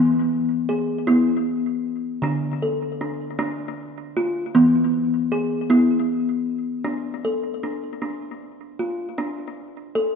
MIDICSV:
0, 0, Header, 1, 2, 480
1, 0, Start_track
1, 0, Tempo, 771506
1, 1391, Time_signature, 6, 3, 24, 8
1, 6317, End_track
2, 0, Start_track
2, 0, Title_t, "Kalimba"
2, 0, Program_c, 0, 108
2, 0, Note_on_c, 0, 52, 83
2, 0, Note_on_c, 0, 59, 70
2, 429, Note_on_c, 0, 68, 67
2, 430, Note_off_c, 0, 59, 0
2, 527, Note_off_c, 0, 52, 0
2, 667, Note_on_c, 0, 64, 77
2, 670, Note_off_c, 0, 68, 0
2, 670, Note_on_c, 0, 59, 66
2, 1151, Note_off_c, 0, 59, 0
2, 1253, Note_off_c, 0, 64, 0
2, 1381, Note_on_c, 0, 50, 76
2, 1390, Note_on_c, 0, 62, 75
2, 1631, Note_off_c, 0, 62, 0
2, 1633, Note_on_c, 0, 69, 61
2, 1872, Note_off_c, 0, 69, 0
2, 1873, Note_on_c, 0, 62, 66
2, 1969, Note_off_c, 0, 50, 0
2, 2101, Note_off_c, 0, 62, 0
2, 2108, Note_on_c, 0, 62, 86
2, 2592, Note_on_c, 0, 65, 69
2, 2693, Note_off_c, 0, 62, 0
2, 2829, Note_on_c, 0, 59, 80
2, 2832, Note_off_c, 0, 65, 0
2, 2832, Note_on_c, 0, 52, 78
2, 3309, Note_on_c, 0, 68, 69
2, 3310, Note_off_c, 0, 59, 0
2, 3415, Note_off_c, 0, 52, 0
2, 3545, Note_on_c, 0, 59, 68
2, 3547, Note_on_c, 0, 64, 82
2, 3550, Note_off_c, 0, 68, 0
2, 4028, Note_off_c, 0, 59, 0
2, 4132, Note_off_c, 0, 64, 0
2, 4259, Note_on_c, 0, 62, 78
2, 4458, Note_off_c, 0, 62, 0
2, 4509, Note_on_c, 0, 69, 62
2, 4749, Note_off_c, 0, 69, 0
2, 4750, Note_on_c, 0, 62, 64
2, 4981, Note_off_c, 0, 62, 0
2, 4988, Note_on_c, 0, 62, 72
2, 5471, Note_on_c, 0, 65, 62
2, 5573, Note_off_c, 0, 62, 0
2, 5710, Note_off_c, 0, 65, 0
2, 5712, Note_on_c, 0, 62, 77
2, 5906, Note_off_c, 0, 62, 0
2, 6192, Note_on_c, 0, 69, 74
2, 6317, Note_off_c, 0, 69, 0
2, 6317, End_track
0, 0, End_of_file